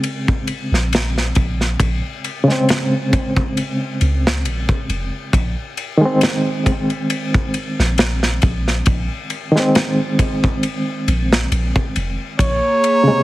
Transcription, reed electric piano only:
0.00 2.41 C#3 medium
0.00 2.43 G#3 medium
0.00 2.45 C4 medium
2.44 5.28 C#3 medium
2.48 5.31 G#3 medium
2.52 5.33 C4 loud
5.97 9.47 D#3 medium
5.97 9.49 G#3 medium
6.05 9.51 C4 loud
9.52 12.35 D#3 medium
9.52 12.37 G#3 medium
9.59 12.39 C4 loud
13.04 13.23 C#3 medium
13.08 13.23 G#3 medium
13.12 13.23 C3 loud

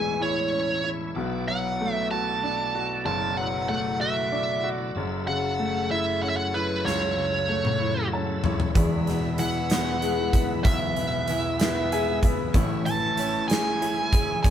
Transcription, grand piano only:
0.00 1.11 E1 medium
0.00 1.11 E2 medium
0.00 0.80 E3 medium
0.00 1.11 G#3 medium
0.00 0.52 C#4 medium
0.00 0.20 E4 medium
0.20 0.82 E4 medium
0.52 1.13 C#4 medium
0.84 1.14 E4 medium
1.16 3.02 B1 medium
1.16 3.02 B2 medium
1.49 2.71 F#3 medium
1.81 3.03 A3 medium
2.11 2.74 F#4 medium
2.43 3.66 D4 medium
2.75 3.97 F#4 medium
3.05 4.91 F#1 medium
3.05 4.92 F#2 medium
3.38 4.60 F#3 medium
3.69 4.92 A3 medium
4.00 4.62 F#4 medium
4.32 4.93 D4 medium
4.64 4.94 F#4 medium
4.97 6.82 F#1 medium
4.97 6.82 F#2 medium
5.28 6.50 C#3 medium
5.59 6.82 A3 medium
5.91 6.53 E4 medium
6.23 7.45 C#4 medium
6.55 7.77 E4 medium
6.85 8.71 C#2 medium
7.17 8.40 C#3 soft
7.49 8.71 A3 medium
7.80 8.43 E4 medium
8.13 8.74 C#4 medium
8.13 8.42 A5 medium
8.45 8.75 E4 medium
8.45 8.74 C#5 medium
8.76 10.62 E1 medium
8.76 10.62 E2 medium
9.08 10.30 B2 soft
9.39 10.61 E3 medium
9.71 10.31 B3 medium
10.02 11.25 G#3 medium
10.33 11.56 B3 medium
10.65 12.51 B1 medium
10.97 12.20 B2 soft
11.30 12.52 E3 medium
11.61 12.23 B3 medium
11.93 12.53 G#3 medium
11.93 12.22 G#5 medium
12.24 12.54 B3 medium
12.24 12.53 E5 medium
12.55 14.41 A1 medium
12.55 14.41 A2 medium
12.87 14.09 E3 medium
13.19 14.41 C#4 medium
13.49 14.12 G#4 medium
13.82 14.50 E4 medium
14.13 14.50 G#4 medium
14.45 14.50 E1 medium
14.45 14.50 E2 medium

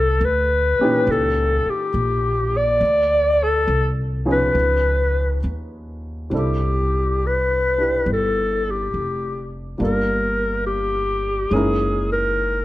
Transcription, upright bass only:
0.00 0.19 C2 medium
0.21 0.75 D2 medium
0.79 muted upright bass stroke soft
1.07 1.61 C#2 medium
1.66 muted upright bass stroke soft
1.94 2.78 A#1 medium
2.81 3.65 D2 medium
3.67 4.52 C2 medium
4.55 5.41 C#2 medium
5.44 6.29 D#2 medium
6.31 8.03 C2 medium
8.06 8.89 G1 medium
8.94 9.76 F1 medium
9.80 11.48 G1 medium
11.51 12.65 F#1 medium

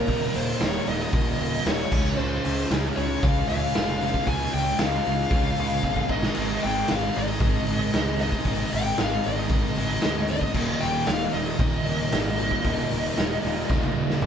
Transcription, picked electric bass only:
0.08 0.27 D#1 loud
0.36 0.54 D#1 medium
0.62 0.80 D#1 medium
0.88 1.06 D#1 medium
1.13 1.32 D#1 medium
1.39 1.58 D#1 medium
1.66 1.84 D#1 medium
1.92 2.11 C#2 medium
2.19 2.37 C#2 loud
2.46 2.64 C#2 loud
2.71 2.89 C#2 medium
2.97 3.16 C#2 medium
3.23 3.42 C#2 medium
3.49 3.68 C#2 medium
3.76 4.13 F1 medium
4.27 4.46 C#2 loud
4.54 4.72 C#2 medium
4.80 4.99 C#2 medium
5.07 5.25 C#2 medium
5.31 5.50 C#2 medium
5.60 5.78 C#2 medium
5.83 6.02 G1 medium
6.09 6.28 G#1 medium
6.38 6.56 G#1 medium
6.64 6.83 G#1 medium
6.91 7.09 G#1 medium
7.17 7.35 G#1 medium
7.40 7.59 G#1 medium
7.68 7.86 G#1 medium
7.95 8.31 C#2 medium
8.45 8.64 G#1 medium
8.73 8.92 G#1 medium
9.00 9.18 G#1 medium
9.27 9.45 G#1 medium
9.50 9.69 G#1 medium
9.78 9.96 G#1 medium
10.05 10.41 D2 medium
10.54 10.73 D#1 loud
10.83 11.01 D#1 medium
11.08 11.27 D#1 loud
11.34 11.53 D#1 medium
11.59 11.78 D#1 loud
11.87 12.05 D#1 medium
12.13 12.50 G#1 medium
12.65 12.84 D#1 medium
12.92 13.10 D#1 medium
13.18 13.37 D#1 medium
13.45 13.63 D#1 medium
13.70 13.89 D#1 loud
13.95 14.14 D#1 medium
14.22 14.26 G#1 medium

